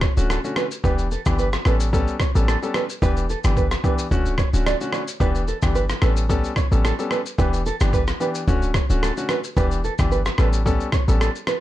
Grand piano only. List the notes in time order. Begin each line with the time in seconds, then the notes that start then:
0.17 D3 A3 C#4 F#4
0.44 D3 A3 C#4 F#4
0.84 E3 B3 D4 G4
1.26 E3 B3 D4 G4
1.65 G3 B3 C#4 A4
1.93 G3 B3 C#4 A4
2.35 G3 B3 C#4 A4
2.62 G3 B3 C#4 A4
3.02 E3 B3 D4 G4
3.44 E3 B3 D4 G4
3.84 E3 B3 D4 G4
4.11 D3 A3 C#4 F#4
4.53 D3 A3 C#4 F#4
4.81 D3 A3 C#4 F#4
5.20 E3 B3 D4 G4
5.62 E3 B3 D4 G4
6.02 G3 B3 C#4 A4
6.29 G3 B3 C#4 A4
6.71 G3 B3 C#4 A4
6.99 G3 B3 C#4 A4
7.38 E3 B3 D4 G4
7.81 E3 B3 D4 G4
8.20 E3 B3 D4 G4
8.47 D3 A3 C#4 F#4
8.90 D3 A3 C#4 F#4
9.17 D3 A3 C#4 F#4
9.57 E3 B3 D4 G4
9.99 E3 B3 D4 G4
10.38 G3 B3 C#4 A4
10.66 G3 B3 C#4 A4
11.08 G3 B3 C#4 A4